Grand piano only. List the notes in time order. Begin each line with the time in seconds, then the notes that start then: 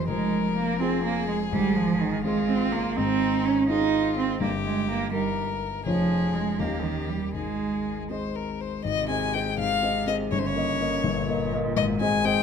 Already playing: F1 F2 C4 G4 A#4
0.08 F1 F2
0.81 C4 F4 G#4
1.52 G#1 G#2
2.25 C4 F4 G#4
2.97 G#1 G#2
3.69 C4 D#4 G#4
4.41 G1 G2
5.13 D#4 A#4
5.86 F1 F2 C#4 F4 C#5
6.59 D#2 D#3 C#4 G4 D#5
7.35 G#1 G#2
8.10 C4 G#4 D#5
8.84 G#1 G#2
9.09 C4 G#4 D#5
9.34 C4 G#4 D#5
9.58 G#1 G#2
9.83 C4 G#4 D#5
10.07 C4 G#4 D#5
10.32 G1 G2
10.56 A#3 A#4 D#5
10.80 A#3 A#4 D#5
11.04 G1 G2
11.29 A#3 A#4 D#5
11.53 A#3 A#4 D#5
11.76 G#1 G#2
12.01 C4 G#4 D#5
12.25 C4 G#4 D#5